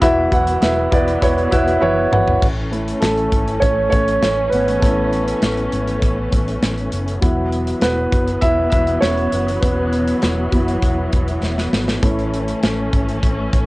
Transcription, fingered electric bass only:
0.02 0.27 E1 medium
0.32 0.57 E1 medium
0.62 0.87 E1 medium
0.93 1.17 E1 medium
1.22 1.47 E1 medium
1.52 1.77 E1 medium
1.82 2.07 F#1 medium
2.12 2.37 G#1 medium
2.43 2.92 A1 medium
3.02 3.27 A1 medium
3.33 3.57 G#1 medium
3.62 3.87 A1 medium
3.93 4.17 A1 medium
4.22 4.47 A1 medium
4.53 4.77 G#1 medium
4.83 5.32 A1 medium
5.42 5.67 A1 medium
5.73 5.97 G#1 medium
6.02 6.27 A1 medium
6.33 6.57 A1 medium
6.62 6.87 A1 medium
6.92 7.17 F#1 medium
7.23 7.72 E1 medium
7.82 8.07 E1 medium
8.12 8.37 F#1 medium
8.42 8.67 E1 medium
8.72 8.97 E1 medium
9.02 9.27 E1 medium
9.32 9.57 F#1 medium
9.63 10.12 E1 medium
10.23 10.47 E1 medium
10.53 10.77 F#1 medium
10.82 11.07 E1 medium
11.13 11.37 E1 medium
11.42 11.67 E1 medium
11.73 11.97 G#1 medium
12.03 12.52 A1 medium
12.63 12.87 A1 medium
12.93 13.17 G#1 medium
13.23 13.47 A1 medium
13.53 13.66 A1 medium

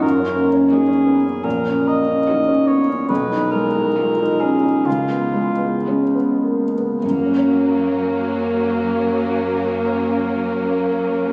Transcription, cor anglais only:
0.02 0.46 A#4 medium
0.72 1.45 G#4 medium
1.44 1.90 A#4 medium
1.88 2.68 D#5 medium
2.67 3.08 C#5 medium
3.09 3.53 B4 medium
3.52 4.41 A#4 medium
4.40 4.87 G#4 soft
4.86 5.86 F4 soft
7.02 11.33 A#4 soft

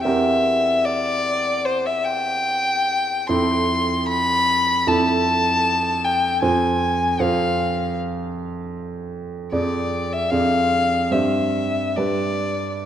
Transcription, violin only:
0.04 0.86 E5 medium
0.85 1.67 D5 loud
1.65 1.87 C5 medium
1.86 2.06 E5 medium
2.05 3.29 G5 medium
3.28 4.08 C6 medium
4.08 4.89 B5 loud
4.88 6.06 A5 loud
6.04 6.42 G5 medium
6.42 7.23 G#5 medium
7.21 7.97 F5 medium
9.52 10.14 D5 medium
10.12 10.32 E5 medium
10.31 11.13 F5 medium
11.12 11.99 E5 medium
11.97 12.85 D5 medium

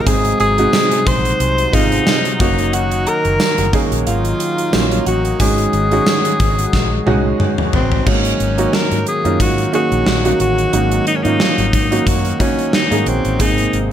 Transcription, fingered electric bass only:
0.07 0.32 G#1 loud
0.40 0.65 G#1 loud
1.07 1.32 A#1 medium
1.40 1.65 C2 loud
1.73 1.98 G#1 medium
2.40 3.04 F#1 medium
3.25 3.36 F#1 medium
3.58 3.70 F#1 loud
3.92 4.03 A#1 medium
4.07 4.32 G#1 loud
4.73 4.98 A#1 loud
5.07 5.32 A1 loud
5.40 5.65 G#1 loud
5.73 5.98 G#1 loud
6.40 6.65 G#1 medium
6.73 6.98 A#1 loud
7.07 7.32 C2 medium
7.74 7.99 A1 medium
8.07 8.32 G#1 loud
8.40 8.65 G#1 medium
8.92 9.03 G#2 medium
9.25 9.36 F#2 medium
9.40 9.65 G#2 loud
9.92 10.03 A#1 medium
10.07 10.32 A#1 medium
10.40 10.65 A1 medium
10.73 10.98 G#1 loud
11.25 11.36 G#2 medium
11.58 11.69 G#1 medium
11.73 11.98 G#2 loud
12.07 12.32 F#2 medium
12.91 13.03 G#2 medium
13.06 13.20 A#1 medium
13.25 13.36 A1 medium
13.40 13.65 G#1 loud
13.73 13.92 G#1 medium

